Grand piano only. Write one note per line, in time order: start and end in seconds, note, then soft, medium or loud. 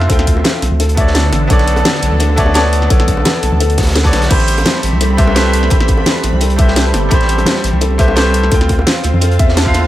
0.00 0.07 D3 loud
0.00 0.09 C4 medium
0.00 0.11 F4 medium
0.00 0.64 E5 loud
0.00 0.64 F5 loud
0.07 0.60 D3 medium
0.07 0.61 C4 medium
0.07 0.62 F4 medium
0.12 0.63 G5 medium
0.95 1.46 B3 medium
0.95 1.48 A4 medium
0.95 1.49 C#5 medium
1.00 1.49 D5 medium
1.48 2.35 B3 loud
1.48 2.35 A4 medium
1.48 2.36 C#5 medium
1.53 2.37 D5 loud
2.36 2.52 B3 loud
2.36 2.53 A4 medium
2.36 2.53 C#5 medium
2.36 2.54 D5 loud
2.54 2.86 B3 loud
2.54 2.88 A4 medium
2.54 2.89 C#5 medium
2.54 2.89 D5 loud
2.88 3.75 B3 medium
2.88 3.76 A4 medium
2.88 3.77 C#5 medium
2.93 3.77 D5 medium
4.04 4.28 B3 medium
4.04 4.29 A4 medium
4.04 4.29 C#5 medium
4.04 4.29 D5 loud
4.28 5.15 A3 medium
4.28 5.16 G4 medium
4.28 5.17 B5 medium
4.33 5.18 C5 loud
5.17 5.33 A3 loud
5.17 5.34 G4 medium
5.17 5.34 B4 medium
5.17 5.35 C5 loud
5.35 5.67 A3 loud
5.35 5.69 G4 medium
5.35 5.69 B4 medium
5.35 5.70 C5 loud
5.68 6.55 A3 medium
5.68 6.56 G4 medium
5.68 6.57 B5 medium
5.74 6.58 C5 medium
6.56 7.07 A3 medium
6.56 7.09 G4 medium
6.56 7.10 B4 medium
6.61 7.11 C5 medium
7.09 7.96 A3 medium
7.09 7.97 G4 medium
7.09 7.98 B5 medium
7.14 7.98 C5 loud
7.98 8.14 A3 loud
7.98 8.15 G4 medium
7.98 8.15 B4 medium
7.98 8.15 C5 loud
8.15 8.49 A3 loud
8.15 8.50 G4 medium
8.15 8.50 B4 medium
8.15 8.51 C5 loud
8.49 9.36 D3 medium
8.49 9.37 C4 medium
8.49 9.38 F4 medium
8.54 9.39 G5 medium
9.65 9.87 D3 medium
9.65 9.87 C4 medium
9.65 9.87 F4 medium
9.65 9.87 F5 loud